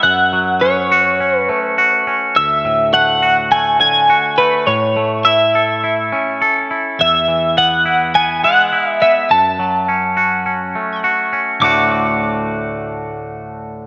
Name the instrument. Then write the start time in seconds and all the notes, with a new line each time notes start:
clean electric guitar
0.03 F#2 F#5
0.33 F#3
0.61 C#4 C#5
0.92 F#4
1.20 C#4
1.38 B4
1.49 A3
1.78 F#4
2.07 C#4
2.36 D2 E5
2.65 A2
2.94 A3 F#5
3.22 F#4
3.52 A3 G#5
3.80 D3 G#5
4.10 F#4
4.38 A3 B4
4.67 A2 C#5
4.96 A3
5.25 E4 E5
5.55 A4
5.84 E4
6.12 C#4
6.42 A4
6.71 E4
6.99 E2 E5
7.28 E3
7.57 B3 F#5
7.85 E4
8.15 B3 G#5
8.43 G#3 F#5
8.72 E4
8.90 E5
9.01 B3 E5
9.30 F#2 A5
9.59 F#3
9.88 C#4
10.17 F#4
10.46 C#4
10.75 A3
11.04 F#4
11.33 C#4
11.60 D2 A2 D3 A3 D6
11.64 F#4